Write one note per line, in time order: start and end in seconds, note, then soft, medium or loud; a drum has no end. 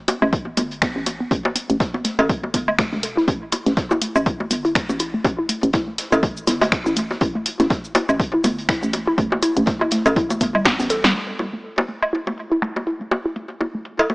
0.08 0.18 B3 medium
0.08 closed hi-hat medium
0.08 high bongo medium
0.22 0.52 A1 loud
0.22 0.27 A3 medium
0.22 low woodblock medium
0.33 kick loud
0.33 closed hi-hat medium
0.47 0.54 B3 medium
0.57 0.89 G1 loud
0.57 0.64 A3 medium
0.57 closed hi-hat medium
0.57 high bongo soft
0.71 closed hi-hat soft
0.82 0.92 B3 medium
0.82 finger snap loud
0.82 kick loud
0.82 snare loud
0.82 closed hi-hat medium
0.96 1.26 A1 medium
0.96 1.01 A3 medium
1.06 closed hi-hat loud
1.06 closed hi-hat medium
1.06 high bongo soft
1.20 1.28 B3 medium
1.31 1.41 A1 loud
1.31 1.38 A3 medium
1.31 kick loud
1.31 closed hi-hat loud
1.45 high bongo medium
1.55 1.65 B3 medium
1.55 closed hi-hat medium
1.70 1.77 A1 loud
1.70 1.75 A3 medium
1.70 closed hi-hat soft
1.80 kick loud
1.80 snare loud
1.80 closed hi-hat medium
1.94 2.02 B3 medium
1.94 high bongo soft
2.04 2.11 A3 medium
2.04 snare medium
2.04 closed hi-hat medium
2.19 2.48 A1 loud
2.19 cowbell medium
2.19 low woodblock medium
2.29 2.39 B3 medium
2.29 kick loud
2.29 closed hi-hat medium
2.43 2.48 A3 medium
2.43 high bongo soft
2.54 2.85 G1 loud
2.54 2.61 A3 medium
2.54 kick medium
2.54 closed hi-hat medium
2.68 2.71 A3 medium
2.68 low woodblock medium
2.79 2.85 A3 loud
2.79 finger snap loud
2.79 kick loud
2.79 snare loud
2.79 closed hi-hat medium
2.79 high bongo medium
2.92 3.22 E1 medium
2.92 2.96 A3 medium
2.92 snare medium
3.03 3.10 A4 medium
3.03 closed hi-hat medium
3.17 3.25 E4 loud
3.17 snare soft
3.28 3.37 A1 loud
3.28 3.34 A3 medium
3.28 kick loud
3.28 closed hi-hat medium
3.52 3.59 E4 loud
3.52 closed hi-hat medium
3.52 high bongo soft
3.66 3.74 A1 loud
3.66 3.71 A3 medium
3.66 snare soft
3.66 closed hi-hat soft
3.77 kick loud
3.77 snare loud
3.77 closed hi-hat medium
3.91 3.96 E4 loud
3.91 high bongo medium
3.91 cabasa soft
4.02 4.08 A3 medium
4.02 closed hi-hat medium
4.16 4.45 A1 medium
4.16 cabasa soft
4.16 low woodblock medium
4.26 4.33 E4 loud
4.26 kick loud
4.26 closed hi-hat medium
4.40 4.45 A3 medium
4.40 high bongo soft
4.51 4.82 G1 medium
4.51 closed hi-hat medium
4.51 cabasa soft
4.65 4.70 E4 loud
4.65 closed hi-hat soft
4.75 4.82 A3 medium
4.75 finger snap loud
4.75 kick loud
4.75 snare loud
4.75 closed hi-hat medium
4.89 5.19 A1 medium
4.89 high bongo soft
4.89 cabasa soft
4.99 5.06 E4 loud
4.99 closed hi-hat medium
5.14 5.19 A3 medium
5.25 5.34 A1 loud
5.25 kick loud
5.25 closed hi-hat medium
5.25 high bongo medium
5.39 5.43 E4 loud
5.49 5.56 A3 medium
5.49 closed hi-hat medium
5.63 5.70 A1 loud
5.63 closed hi-hat soft
5.73 5.80 E4 loud
5.73 kick loud
5.73 snare loud
5.73 closed hi-hat medium
5.73 high bongo soft
5.88 5.93 A3 medium
5.98 snare medium
5.98 closed hi-hat medium
6.12 6.42 A1 loud
6.12 6.17 E4 loud
6.12 cowbell medium
6.12 cabasa soft
6.12 low woodblock medium
6.23 6.29 A3 medium
6.23 kick loud
6.23 closed hi-hat medium
6.23 high bongo soft
6.37 cabasa soft
6.47 6.79 G1 loud
6.47 6.54 E4 loud
6.47 snare loud
6.47 closed hi-hat medium
6.47 cabasa soft
6.61 6.66 A3 medium
6.61 snare loud
6.61 closed hi-hat medium
6.61 high bongo medium
6.61 low woodblock medium
6.72 finger snap loud
6.72 kick loud
6.72 snare loud
6.72 closed hi-hat medium
6.86 7.16 A1 medium
6.86 6.91 E4 loud
6.86 snare soft
6.86 cabasa soft
6.96 7.03 A3 medium
6.96 closed hi-hat medium
6.96 cabasa soft
7.10 snare soft
7.10 high bongo soft
7.21 7.31 A1 loud
7.21 7.28 E4 loud
7.21 kick loud
7.21 closed hi-hat medium
7.35 7.40 A3 medium
7.46 closed hi-hat medium
7.60 7.67 A1 loud
7.60 7.65 E4 loud
7.60 snare soft
7.60 closed hi-hat soft
7.60 high bongo soft
7.70 7.77 A3 medium
7.70 kick loud
7.70 snare loud
7.70 closed hi-hat medium
7.84 cabasa soft
7.95 8.02 E4 loud
7.95 closed hi-hat medium
7.95 high bongo medium
8.09 8.39 A1 loud
8.09 8.14 A3 medium
8.09 cabasa soft
8.09 low woodblock medium
8.20 kick loud
8.20 closed hi-hat medium
8.34 8.39 E4 loud
8.44 8.75 G1 loud
8.44 8.51 A3 medium
8.44 closed hi-hat medium
8.44 high bongo soft
8.44 cabasa soft
8.58 closed hi-hat soft
8.69 8.75 E4 loud
8.69 finger snap loud
8.69 kick loud
8.69 snare loud
8.69 closed hi-hat loud
8.83 9.12 A1 medium
8.83 8.88 A3 medium
8.83 cabasa soft
8.93 closed hi-hat medium
8.93 high bongo soft
9.07 9.12 E4 loud
9.18 9.27 A1 medium
9.18 9.24 A3 medium
9.18 kick loud
9.18 closed hi-hat medium
9.32 high bongo medium
9.43 9.49 E4 loud
9.43 closed hi-hat medium
9.43 cabasa medium
9.57 9.64 A1 loud
9.57 9.62 A3 medium
9.57 closed hi-hat soft
9.66 kick loud
9.66 snare loud
9.66 closed hi-hat medium
9.81 9.86 E4 loud
9.81 high bongo soft
9.81 low woodblock soft
9.91 9.98 A3 medium
9.91 snare medium
9.91 closed hi-hat medium
10.06 10.35 A1 loud
10.06 cowbell medium
10.06 cabasa soft
10.06 low woodblock medium
10.16 10.23 E4 loud
10.16 kick loud
10.16 closed hi-hat medium
10.30 10.35 A3 medium
10.30 closed hi-hat soft
10.30 high bongo soft
10.30 cabasa soft
10.41 10.72 G1 loud
10.41 10.45 A3 medium
10.41 kick medium
10.41 closed hi-hat medium
10.41 cabasa soft
10.55 10.60 G3 medium
10.55 low woodblock medium
10.65 10.75 C4 medium
10.65 finger snap loud
10.65 kick loud
10.65 snare loud
10.65 closed hi-hat medium
10.65 high bongo medium
10.79 11.09 A1 medium
10.79 10.87 B3 medium
10.79 snare loud
10.79 closed hi-hat medium
10.79 cabasa soft
10.90 11.00 A4 medium
10.90 snare loud
10.90 closed hi-hat medium
10.90 cabasa soft
11.04 11.07 G3 loud
11.04 snare medium
11.04 snare loud
11.04 closed hi-hat medium
11.15 11.21 A3 medium
11.39 11.46 E4 medium
11.39 closed hi-hat medium
11.39 high bongo soft
11.53 11.58 A3 medium
11.53 closed hi-hat soft
11.78 11.83 E4 loud
11.78 high bongo medium
11.88 11.95 A3 medium
11.88 closed hi-hat medium
12.03 low woodblock medium
12.13 12.20 E4 loud
12.27 12.32 A3 medium
12.27 high bongo soft
12.38 closed hi-hat medium
12.52 12.56 E4 loud
12.62 12.69 A3 medium
12.62 finger snap loud
12.76 high bongo soft
12.87 12.93 E4 loud
12.87 closed hi-hat medium
13.01 13.06 A3 medium
13.11 high bongo medium
13.26 13.30 E4 loud
13.36 13.43 A3 medium
13.36 closed hi-hat medium
13.50 closed hi-hat soft
13.61 13.67 E4 loud
13.61 high bongo soft
13.75 13.80 A3 medium
13.85 closed hi-hat medium
13.99 14.04 E4 loud
13.99 cowbell medium
13.99 low woodblock medium
14.10 14.15 A3 medium
14.10 high bongo soft